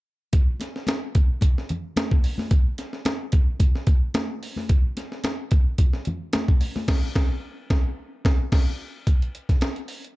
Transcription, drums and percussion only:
0.33 kick loud
0.33 closed hi-hat medium
0.33 muted conga medium
0.60 snare soft
0.60 closed hi-hat medium
0.60 muted conga soft
0.76 snare soft
0.87 snare medium
0.87 closed hi-hat medium
0.87 high conga medium
1.15 kick medium
1.15 closed hi-hat medium
1.41 kick medium
1.41 closed hi-hat medium
1.41 muted conga medium
1.58 snare soft
1.69 closed hi-hat medium
1.69 muted conga soft
1.69 low conga medium
1.96 snare loud
1.96 closed hi-hat medium
1.96 high conga medium
2.11 kick medium
2.24 open hi-hat medium
2.38 snare soft
2.38 high conga medium
2.51 kick loud
2.51 closed hi-hat medium
2.51 muted conga soft
2.78 snare soft
2.78 closed hi-hat medium
2.93 snare soft
3.05 snare loud
3.05 closed hi-hat medium
3.05 high conga medium
3.32 kick medium
3.32 closed hi-hat medium
3.60 kick medium
3.60 closed hi-hat medium
3.60 muted conga medium
3.75 snare soft
3.87 kick loud
3.87 closed hi-hat medium
3.87 muted conga soft
4.14 snare loud
4.14 closed hi-hat medium
4.14 high conga medium
4.43 open hi-hat medium
4.56 snare soft
4.56 high conga medium
4.69 kick loud
4.69 closed hi-hat medium
4.69 muted conga soft
4.97 snare soft
4.97 closed hi-hat medium
4.97 muted conga soft
5.12 snare soft
5.24 snare medium
5.24 closed hi-hat medium
5.24 high conga medium
5.51 kick loud
5.51 closed hi-hat medium
5.78 kick medium
5.78 closed hi-hat medium
5.78 muted conga medium
5.93 snare soft
6.05 closed hi-hat medium
6.05 muted conga soft
6.05 low conga medium
6.33 snare loud
6.33 closed hi-hat medium
6.33 high conga medium
6.48 kick medium
6.61 open hi-hat medium
6.76 snare soft
6.76 high conga medium
6.88 kick loud
6.88 snare loud
6.88 crash medium
7.16 kick loud
7.16 snare loud
7.70 kick loud
7.70 snare loud
8.25 kick loud
8.25 snare loud
8.52 kick loud
8.52 snare medium
8.52 crash medium
9.07 kick loud
9.07 closed hi-hat medium
9.22 closed hi-hat soft
9.35 closed hi-hat medium
9.49 kick medium
9.49 snare soft
9.49 closed hi-hat soft
9.61 snare medium
9.61 closed hi-hat medium
9.76 closed hi-hat soft
9.88 open hi-hat medium
10.04 closed hi-hat soft

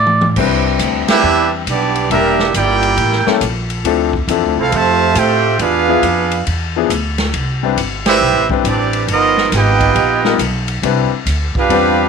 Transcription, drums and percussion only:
0.06 mid tom medium
0.21 mid tom loud
0.36 kick medium
0.36 crash loud
0.79 hi-hat pedal medium
0.79 ride medium
1.08 snare loud
1.08 ride medium
1.67 hi-hat pedal medium
1.67 ride medium
1.95 ride medium
2.11 ride medium
2.39 snare medium
2.54 hi-hat pedal medium
2.54 ride medium
2.83 ride medium
2.97 ride medium
3.12 snare soft
3.27 snare medium
3.41 hi-hat pedal medium
3.41 ride medium
3.70 ride medium
3.85 ride medium
4.13 kick medium
4.28 hi-hat pedal medium
4.28 ride medium
4.72 ride medium
5.15 hi-hat pedal medium
5.15 ride medium
5.59 ride medium
6.03 hi-hat pedal medium
6.03 ride medium
6.31 ride medium
6.47 ride medium
6.90 hi-hat pedal medium
6.90 ride medium
7.18 snare medium
7.18 ride medium
7.34 ride medium
7.77 hi-hat pedal medium
7.77 ride medium
8.06 snare loud
8.06 ride medium
8.50 kick medium
8.65 hi-hat pedal medium
8.65 ride medium
8.93 ride medium
9.08 ride medium
9.37 snare soft
9.52 snare soft
9.52 hi-hat pedal medium
9.52 ride medium
9.81 kick medium
9.81 ride medium
9.96 ride medium
10.25 snare medium
10.39 hi-hat pedal medium
10.39 ride medium
10.68 ride medium
10.83 ride medium
11.26 hi-hat pedal medium
11.26 ride medium
11.55 kick medium
11.70 ride medium

